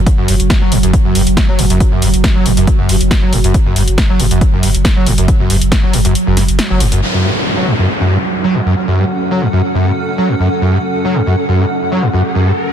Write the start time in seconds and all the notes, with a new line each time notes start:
Already playing: F#3
0.07 kick, closed hi-hat
0.18 F#1 F#2
0.28 F#1 G2, open hi-hat
0.40 F#1, closed hi-hat
0.50 kick, snare, closed hi-hat
0.61 F#1 F#3
0.72 F#1 F#2, open hi-hat
0.83 F#1 F#2, closed hi-hat
0.93 kick, closed hi-hat
1.05 F#1 F#2
1.15 F#1 G2, open hi-hat
1.27 F#1, closed hi-hat
1.37 kick, snare, closed hi-hat
1.48 F#1 F#3
1.59 F#1 F#2, open hi-hat
1.70 F#1 F#2, closed hi-hat
1.80 kick, closed hi-hat
1.92 F#1 F#2
2.02 F#1 G2, open hi-hat
2.14 F#1, closed hi-hat
2.24 kick, snare, closed hi-hat
2.35 F#1 F#3
2.46 F#1 F#2, open hi-hat
2.57 F#1 F#2, closed hi-hat
2.67 kick, closed hi-hat
2.79 F#1 F#2
2.89 F#1 G2, open hi-hat
3.01 F#1, closed hi-hat
3.11 kick, snare, closed hi-hat
3.22 F#1 F#3
3.33 F#1 F#2, open hi-hat
3.44 F#1 F#2, closed hi-hat
3.54 kick, closed hi-hat
3.66 F#1 F#2
3.76 F#1 G2, open hi-hat
3.88 F#1, closed hi-hat
3.98 kick, snare, closed hi-hat
4.09 F#1 F#3
4.20 F#1 F#2, open hi-hat
4.31 F#1 F#2, closed hi-hat
4.41 kick, closed hi-hat
4.53 F#1 F#2
4.63 F#1 G2, open hi-hat
4.75 F#1, closed hi-hat
4.85 kick, snare, closed hi-hat
4.96 F#1 F#3
5.06 F#1 F#2, open hi-hat
5.18 F#1 F#2, closed hi-hat
5.28 kick, closed hi-hat
5.40 F#1 F#2
5.50 F#1 G2, open hi-hat
5.61 F#1, closed hi-hat
5.72 kick, snare, closed hi-hat
5.83 F#1 F#3
5.93 F#1 F#2, open hi-hat
6.05 F#1 F#2, closed hi-hat
6.15 closed hi-hat
6.27 F#1 F#2
6.37 F#1 G2, snare, open hi-hat
6.48 F#1, closed hi-hat
6.59 snare, closed hi-hat
6.70 F#1 F#3
6.80 F#1 F#2, open hi-hat
6.92 F#1 F#2, closed hi-hat
7.02 F#3 C#4, crash, downlifter
7.14 F#2
7.24 G2
7.31 F#5
7.46 A4
7.57 F#3
7.67 F#2
7.79 F#2
8.01 F#2
8.11 G2
8.44 F#3
8.54 F#2
8.66 F#2
8.88 F#2
8.98 G2
9.31 F#3
9.41 F#2
9.53 F#2
9.75 F#2
9.85 G2
10.18 F#3
10.28 F#2
10.40 F#2
10.50 riser
10.61 F#2
10.72 G2
11.05 F#3
11.15 F#2
11.27 F#2
11.48 F#2
11.59 G2
11.92 F#3
12.02 F#2
12.14 F#2
12.35 F#2
12.46 G2